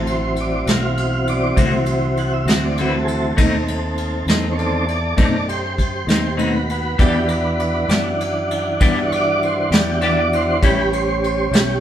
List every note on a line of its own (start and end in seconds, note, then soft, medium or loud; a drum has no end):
0.00 0.64 A1 loud
0.00 3.34 E3 medium
0.00 3.35 F#3 soft
0.00 3.35 C4 medium
0.06 0.36 C5 medium
0.06 ride medium
0.36 ride medium
0.41 0.68 D5 loud
0.67 1.54 B1 medium
0.67 0.86 A3 soft
0.67 0.86 C4 medium
0.67 0.85 F#4 medium
0.67 snare loud
0.67 ride medium
0.71 1.28 F5 loud
0.97 ride medium
1.27 1.57 D5 loud
1.27 ride medium
1.56 2.45 C2 loud
1.56 1.75 D3 medium
1.56 1.76 A3 medium
1.56 1.76 C4 medium
1.56 1.76 F#4 medium
1.56 kick loud
1.56 ride medium
1.86 ride medium
2.17 2.32 F#5 loud
2.17 ride medium
2.33 2.47 E5 loud
2.46 3.34 D2 loud
2.46 2.66 C4 medium
2.46 2.66 F#4 medium
2.46 snare loud
2.46 ride medium
2.50 2.67 A3 soft
2.50 2.63 F#5 medium
2.65 2.78 D5 medium
2.77 2.96 D3 medium
2.77 2.97 A3 medium
2.77 2.97 C4 medium
2.77 2.97 F#4 medium
2.77 2.93 B4 medium
2.77 ride medium
2.94 3.07 A4 loud
3.04 3.08 G#4 medium
3.04 ride medium
3.09 4.25 A4 loud
3.36 4.25 D#2 medium
3.36 3.55 B2 medium
3.36 4.56 D#3 medium
3.36 3.56 A3 loud
3.36 4.55 A3 medium
3.36 3.56 C4 loud
3.36 4.56 C4 medium
3.36 3.56 D#4 loud
3.36 kick loud
3.36 ride loud
3.68 ride medium
3.98 ride medium
4.26 5.15 E2 loud
4.26 4.47 C4 medium
4.26 4.47 D#4 medium
4.26 snare loud
4.26 ride medium
4.31 4.48 A3 soft
4.52 4.84 A3 medium
4.52 4.57 C#5 medium
4.57 4.85 D#3 medium
4.57 4.85 C4 medium
4.57 4.86 A4 medium
4.57 4.86 D5 loud
4.57 ride medium
4.87 5.14 A4 loud
4.87 5.16 D5 loud
4.87 ride medium
5.15 6.06 F#2 loud
5.15 5.36 B2 medium
5.15 5.37 A3 medium
5.15 5.36 C4 medium
5.15 5.37 D#4 medium
5.15 5.45 A4 medium
5.15 5.47 D5 loud
5.15 kick loud
5.15 ride medium
5.48 5.76 G4 medium
5.48 5.78 C5 loud
5.48 ride medium
5.77 6.06 G4 medium
5.77 6.08 C5 medium
5.77 kick medium
5.77 ride medium
6.07 6.96 D#2 loud
6.07 6.28 A3 soft
6.07 6.28 C4 soft
6.07 6.27 D#4 medium
6.07 6.38 G4 medium
6.07 snare loud
6.07 ride medium
6.11 6.40 C5 medium
6.37 6.56 B2 medium
6.37 6.57 A3 medium
6.37 6.57 C4 medium
6.37 6.57 D#4 medium
6.37 6.68 F#4 medium
6.37 6.69 B4 medium
6.37 ride medium
6.69 6.97 F#4 medium
6.69 7.00 B4 loud
6.69 ride medium
6.98 7.87 E2 medium
6.98 7.17 E3 loud
6.98 10.58 E3 medium
6.98 7.18 B3 medium
6.98 7.18 D4 medium
6.98 10.58 D4 medium
6.98 10.57 F#4 medium
6.98 7.28 G4 medium
6.98 7.18 G4 loud
6.98 7.30 B4 loud
6.98 kick loud
6.98 ride loud
7.28 7.31 A#4 medium
7.28 7.89 B4 medium
7.28 ride medium
7.60 ride medium
7.89 8.77 F#2 loud
7.89 8.09 D4 soft
7.89 8.08 G4 medium
7.89 snare loud
7.89 ride medium
7.93 8.10 B3 soft
8.21 ride medium
8.51 ride medium
8.80 9.69 G2 loud
8.80 8.99 E3 medium
8.80 8.99 B3 loud
8.80 9.00 D4 loud
8.80 9.00 G4 loud
8.80 kick loud
8.80 ride loud
9.09 9.12 C#5 loud
9.09 ride medium
9.14 9.42 D5 loud
9.43 9.72 C5 loud
9.43 ride medium
9.71 10.59 E2 medium
9.71 9.90 B3 soft
9.71 9.91 D4 soft
9.71 9.90 G4 medium
9.71 10.02 G4 medium
9.71 snare loud
9.71 ride medium
10.01 10.20 E3 medium
10.01 10.20 B3 medium
10.01 10.20 D4 medium
10.01 10.21 G4 medium
10.01 10.04 C#5 medium
10.01 ride medium
10.05 10.33 D5 loud
10.33 10.63 C5 loud
10.33 ride medium
10.62 11.50 A1 medium
10.62 10.81 A2 medium
10.62 11.80 G3 medium
10.62 10.81 G3 medium
10.62 11.80 C#4 medium
10.62 10.81 C#4 loud
10.62 10.81 E4 loud
10.62 10.92 G4 loud
10.62 10.87 B4 soft
10.62 kick loud
10.62 ride loud
10.89 10.92 B4 medium
10.93 11.21 C5 loud
10.93 ride medium
11.22 11.52 C5 loud
11.22 ride medium
11.51 11.80 B1 loud
11.51 11.72 G3 medium
11.51 11.72 C#4 soft
11.51 11.71 E4 medium
11.51 11.80 G4 medium
11.51 snare loud
11.51 ride medium